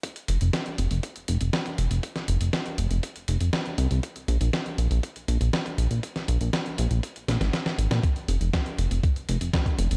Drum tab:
HH |xxxxxxxxxxxxxxxx|xxxxxxxxxxxxxxxx|xxxxxxxxxxxxxxxx|xxxxxxxxxxxxxxxx|
SD |----o-------o---|-o--o-------o---|----o-------o---|-o--o-----oooo-o|
BD |o---o---o---oo--|o---o---o---o---|o---o---o---oo--|o---o---o--oo---|

HH |xxxxxxxxxxxxxxxx|
SD |----o-------o---|
BD |o---o---o---oo--|